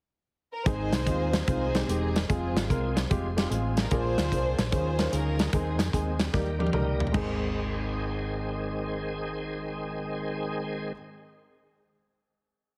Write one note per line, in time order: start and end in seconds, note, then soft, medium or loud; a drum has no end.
0.52 0.65 A#4 medium
0.66 0.89 G#1 loud
0.66 1.30 G#2 medium
0.66 2.26 D#3 medium
0.66 0.95 G#3 medium
0.66 2.26 G#3 medium
0.66 2.26 C4 medium
0.66 0.95 C4 medium
0.66 0.95 D#4 medium
0.66 1.45 D#4 medium
0.66 0.95 G#4 medium
0.66 2.26 G#4 medium
0.66 1.45 G#4 medium
0.66 1.46 C5 loud
0.66 kick loud
0.66 closed hi-hat medium
0.92 1.05 C2 medium
0.92 snare loud
0.92 closed hi-hat medium
1.06 1.41 D#2 medium
1.06 1.36 G#3 medium
1.06 1.36 C4 medium
1.06 1.36 D#4 medium
1.06 1.36 F4 medium
1.06 kick medium
1.06 closed hi-hat medium
1.33 snare loud
1.33 closed hi-hat medium
1.47 1.82 C2 medium
1.47 1.63 G#3 medium
1.47 1.63 C4 medium
1.47 1.63 D#4 medium
1.47 1.89 D#4 medium
1.47 1.63 F4 medium
1.47 1.87 G#4 medium
1.47 1.85 C5 medium
1.47 kick loud
1.47 closed hi-hat medium
1.75 1.83 G#3 medium
1.75 1.83 C4 medium
1.75 1.83 D#4 medium
1.75 1.83 G4 medium
1.75 snare loud
1.75 closed hi-hat medium
1.88 2.23 E1 medium
1.88 2.17 G#3 medium
1.88 2.17 C4 medium
1.88 2.28 C4 medium
1.88 2.17 D#4 medium
1.88 2.28 D#4 medium
1.88 2.17 G4 medium
1.88 2.28 G#4 medium
1.88 closed hi-hat medium
2.16 snare loud
2.16 closed hi-hat medium
2.29 2.56 F1 medium
2.29 3.89 F3 medium
2.29 2.58 G#3 medium
2.29 3.88 G#3 medium
2.29 2.58 C4 medium
2.29 3.88 C4 medium
2.29 3.07 C4 medium
2.29 2.58 F4 medium
2.29 3.07 F4 medium
2.29 2.67 G#4 medium
2.29 2.58 G#4 medium
2.29 3.89 G#4 medium
2.29 kick medium
2.29 closed hi-hat medium
2.56 2.68 G#1 medium
2.56 snare loud
2.56 closed hi-hat medium
2.70 3.04 C2 medium
2.70 2.98 G#3 medium
2.70 2.98 C4 medium
2.70 2.99 F4 medium
2.70 2.99 A#4 medium
2.70 kick medium
2.70 closed hi-hat medium
2.97 snare medium
2.97 closed hi-hat medium
3.10 3.45 F1 medium
3.10 3.25 G#3 medium
3.10 3.26 C4 medium
3.10 3.26 F4 medium
3.10 3.26 G4 medium
3.10 kick loud
3.10 closed hi-hat medium
3.36 3.45 G#3 medium
3.36 3.45 C4 medium
3.36 3.45 F4 medium
3.36 3.45 G4 medium
3.36 snare loud
3.36 closed hi-hat medium
3.49 3.85 A1 medium
3.49 3.78 G#3 medium
3.49 3.79 C4 medium
3.49 3.79 F4 medium
3.49 3.79 G#4 medium
3.49 closed hi-hat medium
3.77 3.91 A#4 medium
3.77 snare loud
3.77 closed hi-hat medium
3.91 4.14 A#1 medium
3.91 4.54 A#2 medium
3.91 4.70 F3 medium
3.91 4.20 A#3 medium
3.91 4.71 A#3 medium
3.91 3.98 C4 soft
3.91 4.20 D4 medium
3.91 4.20 F4 medium
3.91 4.69 F4 medium
3.91 4.71 G#4 medium
3.91 4.20 G#4 medium
3.91 4.69 G#4 medium
3.91 4.71 C5 loud
3.91 kick medium
3.91 closed hi-hat medium
3.97 4.73 D4 medium
4.18 4.29 D2 medium
4.18 snare loud
4.18 closed hi-hat medium
4.31 4.54 C2 medium
4.31 4.60 A#3 medium
4.31 4.60 D4 medium
4.31 4.60 F4 medium
4.31 4.61 G#4 medium
4.31 kick medium
4.31 closed hi-hat medium
4.58 4.70 A#1 medium
4.58 snare loud
4.58 closed hi-hat medium
4.70 5.06 D#2 medium
4.70 5.35 D#3 medium
4.70 5.51 F3 medium
4.70 5.51 C#4 medium
4.70 4.87 C#4 medium
4.70 5.51 D#4 soft
4.70 4.87 D#4 medium
4.70 4.87 F4 medium
4.70 5.12 F4 medium
4.70 4.78 G4 soft
4.70 4.87 G#4 medium
4.70 5.49 G#4 medium
4.70 5.10 C5 loud
4.70 kick loud
4.70 closed hi-hat medium
4.76 5.52 G#4 medium
4.98 5.06 C#4 medium
4.98 5.06 D#4 medium
4.98 5.06 F4 medium
4.98 5.07 A#4 medium
4.98 snare loud
4.98 closed hi-hat medium
5.11 5.47 D2 medium
5.11 5.40 C#4 medium
5.11 5.50 C#4 medium
5.11 5.41 D#4 medium
5.11 5.41 F4 medium
5.11 5.50 F4 medium
5.11 5.41 G#4 medium
5.11 5.53 A#4 medium
5.11 closed hi-hat medium
5.39 snare loud
5.39 closed hi-hat medium
5.53 5.78 D#2 medium
5.53 6.32 D#3 medium
5.53 6.16 D#3 medium
5.53 6.32 G#3 medium
5.53 5.82 G#3 medium
5.53 6.32 C4 medium
5.53 5.82 C4 medium
5.53 6.30 C4 medium
5.53 6.30 D#4 medium
5.53 5.82 D#4 medium
5.53 6.32 G#4 medium
5.53 5.94 G#4 medium
5.53 5.82 G#4 medium
5.53 kick medium
5.53 closed hi-hat medium
5.78 5.91 F2 medium
5.78 snare loud
5.78 closed hi-hat medium
5.93 6.28 D#2 medium
5.93 6.22 G#3 medium
5.93 6.22 C4 medium
5.93 6.22 D#4 medium
5.93 6.22 G#4 medium
5.93 kick medium
5.93 closed hi-hat medium
6.20 snare medium
6.20 closed hi-hat medium
6.33 6.68 D#2 medium
6.33 6.97 D#3 medium
6.33 7.13 D#3 medium
6.33 6.48 G3 medium
6.33 7.13 G3 medium
6.33 6.48 A#3 medium
6.33 7.13 A#3 medium
6.33 6.49 D#4 medium
6.33 7.13 G4 medium
6.33 6.49 G4 medium
6.33 kick medium
6.33 snare soft
6.59 6.67 G3 medium
6.59 6.67 A#3 medium
6.59 6.68 D#4 medium
6.59 6.68 G4 medium
6.59 6.74 F5 medium
6.59 high tom medium
6.67 high tom medium
6.73 7.08 C#2 medium
6.73 7.02 G3 medium
6.73 7.02 A#3 medium
6.73 7.02 D#4 medium
6.73 7.02 A#4 medium
6.73 6.99 D#5 medium
6.73 mid tom medium
7.00 7.39 A#4 medium
7.00 floor tom medium
7.07 floor tom medium
7.12 10.91 G#1 medium
7.12 10.92 G#1 medium
7.12 10.92 D#3 medium
7.12 10.89 G#3 medium
7.12 10.92 G#3 medium
7.12 10.91 C4 medium
7.12 10.93 C4 medium
7.12 10.92 D#4 medium
7.12 10.92 G#4 medium
7.12 kick loud
7.12 crash medium
7.16 10.93 G#4 medium